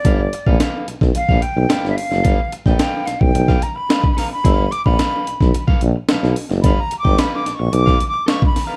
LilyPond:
<<
  \new Staff \with { instrumentName = "Flute" } { \time 4/4 \key g \mixolydian \tempo 4 = 109 d''4 r4 f''8 g''8.~ g''32 e''32 f''8~ | f''8 r8 g''8 f''16 g''8. bes''16 b''8. bes''16 b''16~ | b''8 d'''16 b''4. r4. r16 | \tuplet 3/2 { b''8 bes''8 d'''8 b''8 d'''8 cis'''8 d'''4 d'''8 cis'''8 b''8 bes''8 } | }
  \new Staff \with { instrumentName = "Clean electric guitar" } { \time 4/4 \key g \mixolydian <a' b' f''>16 r8 <a' b' f''>16 <a' b' f''>8 r8. <a' b' f''>16 r8 <a' b' f''>8 r8 | <a' b' f''>16 r8 <a' b' g''>16 <a' b' f''>8 r8. <a' b' f''>16 r8 <a' b' f''>16 r16 <a' b' f''>16 r16 | <a' b' f''>16 r8 <a' b' f''>16 <a' b' f''>8 r8. <a' b' f''>16 r8 <a' b' f''>8 r8 | <a' b' f''>16 r8 <a' b' g''>16 <a' b' f''>8 r8. <a' b' f''>16 r8 <a' b' f''>16 r8 <a' b' f''>16 | }
  \new Staff \with { instrumentName = "Tuba" } { \clef bass \time 4/4 \key g \mixolydian g,,8 r16 bes,,16 r8 b,,16 b,,16 bes,,16 bes,,16 r16 b,,16 g,,16 g,,16 r16 fis,,16 | g,,16 r8 bes,,16 r8 b,,16 b,,16 b,,8 r4. | g,,8 r16 bes,,16 r8 b,,16 b,,16 r16 bes,,16 bes,,16 r16 b,,16 b,,16 r16 fis,,16 | g,,16 r8 g,,16 r8 bes,,16 bes,,16 b,,8 r4. | }
  \new DrumStaff \with { instrumentName = "Drums" } \drummode { \time 4/4 <hh bd>8 hh16 bd16 <hh sn>8 hh16 <bd sn>16 hh16 bd16 hh8 <hh sn>16 sn16 hho16 sn16 | <hh bd>8 hh16 <bd sn>16 <hh sn>8 <hh sn>16 bd16 hh16 <bd sn>16 hh8 <hh sn>16 bd16 <hho sn>8 | <hh bd>8 hh16 bd16 <hh sn>8 hh16 <bd sn>16 hh16 bd16 hh8 <hh sn>16 sn16 hho16 sn16 | <hh bd>8 hh16 bd16 <hh sn>8 <hh sn>8 hh16 <bd sn>16 hh8 <hh sn>16 bd16 <hho sn>8 | }
>>